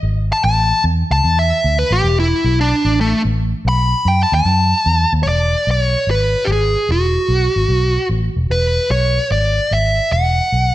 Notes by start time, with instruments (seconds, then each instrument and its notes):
0.03 fingered electric bass G#1
0.33 lead electric guitar A5
0.44 fingered electric bass A1, lead electric guitar A5
0.84 fingered electric bass E2
1.11 fingered electric bass C#2, lead electric guitar A5
1.24 fingered electric bass E2
1.39 lead electric guitar E5
1.64 fingered electric bass D2
1.79 lead electric guitar B4
1.91 fingered electric bass A1, lead electric guitar G4
2.04 fingered electric bass E1
2.20 lead electric guitar E4
2.44 fingered electric bass B1
2.61 lead electric guitar D4
2.85 fingered electric bass A1
3.01 lead electric guitar A3
3.25 fingered electric bass A1
3.65 fingered electric bass B1, lead electric guitar B5
4.05 fingered electric bass F#2, lead electric guitar G5
4.23 lead electric guitar A5
4.32 fingered electric bass D#2, lead electric guitar A5
4.45 fingered electric bass F#2
4.86 fingered electric bass E2
5.13 fingered electric bass D#2
5.23 fingered electric bass E1, lead electric guitar C#5
5.28 lead electric guitar D5
5.67 fingered electric bass B1, lead electric guitar C#5
6.07 fingered electric bass G#1, lead electric guitar B4
6.45 fingered electric bass G#1, lead electric guitar G4
6.52 lead electric guitar G#4
6.89 fingered electric bass E1, lead electric guitar F#4
7.29 fingered electric bass B1
7.56 fingered electric bass G#1
7.69 fingered electric bass B1
8.09 fingered electric bass A1
8.36 fingered electric bass E1
8.50 fingered electric bass E1, lead electric guitar B4
8.90 fingered electric bass B1, lead electric guitar C#5
9.31 fingered electric bass G#1, lead electric guitar D5
9.71 fingered electric bass G#1, lead electric guitar E5
10.12 fingered electric bass E1, lead electric guitar F#5
10.52 fingered electric bass B1